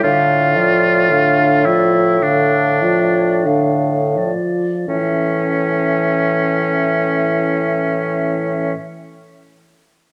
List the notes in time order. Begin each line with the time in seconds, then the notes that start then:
0.03 A2 D3 D4 F4 F5
0.56 F3 F4 D5
1.10 D3 D4 F5
1.66 F3 E4 F4 D5
2.22 D3 D4 F5
2.81 F3 F4 D5
3.00 E5
3.05 D5
3.17 C#5
3.22 D5
3.44 D3 D4 F5
4.16 F3 F4 D5
4.87 A2 E3 C#4 E5